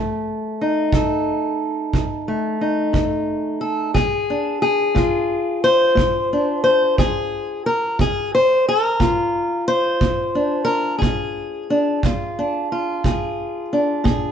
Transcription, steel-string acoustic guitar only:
Already playing: F2 A3
0.61 D#4
0.93 F2 A4
1.94 F2
2.28 A3
2.61 D#4
2.93 F2
3.61 A4
3.94 A#2 G#4
4.30 D4
4.62 G#4
4.95 A#2 F4
5.64 C5
5.95 A#2
6.33 D4
6.64 C5
6.99 A#2 G#4
7.66 A#4
7.99 A#2 G#4
8.35 C5
8.69 A#4
9.00 A#2 F4
9.68 C5
10.01 A#2
10.35 D4
10.65 A#4
10.98 A#2 G#4
11.70 D4
12.06 A#2 F4
12.39 D4
12.72 F4
13.05 A#2 G#4
13.73 D4
14.04 A#2 G#4

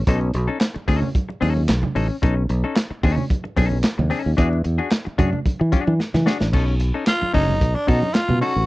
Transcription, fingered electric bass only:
0.07 B1
0.34 B1
0.76 muted fingered electric bass stroke
0.88 D2
1.42 D#2
1.69 B1
1.96 A1
2.23 B1
2.50 B1
2.91 muted fingered electric bass stroke
3.04 D#2
3.58 B1
3.99 D#2
4.26 D#2
4.38 E2
4.65 E2
5.07 muted fingered electric bass stroke
5.19 F#2
5.61 E3
5.87 E3
6.14 E3
6.41 A1
6.54 B1
7.23 muted fingered electric bass stroke
7.35 F#1
7.61 B1
7.89 B2
8.30 B2
8.56 A1

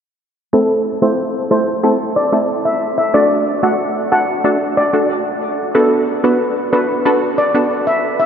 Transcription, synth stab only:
0.53 A3 C4 E4 A4
1.02 A3 C4 E4 A4
1.51 A3 C4 E4 A4
1.83 A3 C4 E4 A4
2.32 A3 C4 E4 A4
3.14 A3 D4 F#4 A4
3.63 A3 D4 F#4 A4
4.12 A3 D4 F#4 A4
4.44 A3 D4 F#4 A4
4.93 A3 D4 F#4 A4
5.75 B3 D4 F#4 A4
6.24 B3 D4 F#4 A4
6.73 B3 D4 F#4 A4
7.05 B3 D4 F#4 A4
7.54 B3 D4 F#4 A4

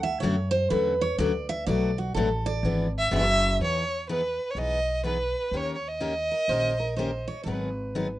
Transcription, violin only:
2.99 E5
3.16 E5
3.64 C#5
4.10 B4
4.51 C#5
4.58 D#5
5.07 B4
5.57 C#5
5.75 C#5
5.88 D#5

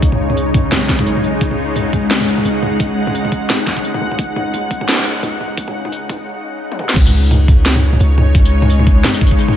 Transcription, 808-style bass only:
Already playing: C#2
0.72 B1
1.41 C#2
2.45 C#2
4.01 C#2
4.19 C#2
5.23 C#2
6.96 C#2
8.01 C#2

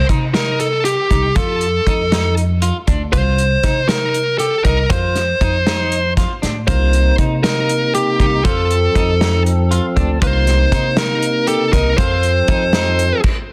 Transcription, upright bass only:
0.09 C3
1.11 C2
1.36 F2
1.87 F2
2.88 D2
3.13 C2
3.64 C3
4.65 C2
4.90 F2
5.41 F2
6.43 A2
6.68 C2
7.18 C3
8.20 C2
8.45 F2
8.95 F2
9.97 D2
10.22 C2
10.72 C3
11.73 C2
11.98 F2
12.48 F2

